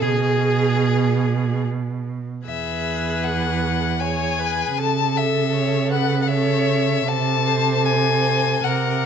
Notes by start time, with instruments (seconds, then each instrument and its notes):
0.01 cello B2, viola G#4, violin G#4
2.46 cello E2, violin G#4 E5, viola B4
3.24 violin F#5
4.00 violin G#4 G#5, viola C#5
4.39 viola B4
4.77 cello C#3, viola A4, violin A4 A5
5.17 violin E5
5.52 viola C#5
5.90 viola B4, violin F#5
6.22 violin F#5
6.28 violin A4 E5, viola C#5
7.08 cello C3, viola A4, violin A4 A5
7.46 viola C5
7.85 viola C5, violin G#5
8.64 cello C3, viola A#4, violin A#4 F#5